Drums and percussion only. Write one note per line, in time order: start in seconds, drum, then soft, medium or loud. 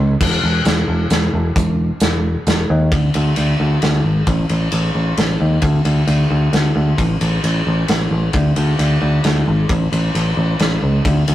0.21 kick loud
0.21 crash loud
0.65 snare medium
0.65 closed hi-hat medium
1.10 snare medium
1.10 closed hi-hat medium
1.56 kick loud
1.56 closed hi-hat medium
2.00 snare medium
2.00 closed hi-hat medium
2.47 snare medium
2.47 closed hi-hat medium
2.92 kick loud
2.92 ride medium
3.14 ride medium
3.36 ride medium
3.82 snare medium
3.82 ride medium
4.27 kick loud
4.27 ride medium
4.49 ride medium
4.72 ride medium
5.17 snare medium
5.17 ride medium
5.62 kick loud
5.62 ride medium
5.85 ride medium
6.07 ride medium
6.53 snare medium
6.53 ride medium
6.98 kick loud
6.98 ride medium
7.21 ride medium
7.44 ride medium
7.88 snare medium
7.88 ride medium
8.33 kick loud
8.33 ride medium
8.56 ride medium
8.79 ride medium
9.24 snare medium
9.24 ride medium
9.69 kick loud
9.69 ride medium
9.93 ride medium
10.15 ride medium
10.59 snare medium
10.59 ride medium
11.05 kick loud
11.05 ride medium
11.28 ride medium